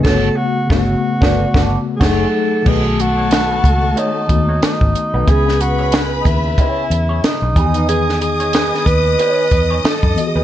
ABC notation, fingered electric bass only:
X:1
M:4/4
L:1/16
Q:"Swing 16ths" 1/4=92
K:Bmix
V:1 name="Fingered electric bass" clef=bass
=G,,,2 z2 G,,,2 z G,,,2 G,,,2 z F,,,2 z2 | B,,,6 C,,2 z2 D,,2 z G,,, z B,,, | C,,6 D,,2 z2 E,,2 z B,,, E,,2- | E,,6 D,,2 z2 E,,2 z F,, z D,, |]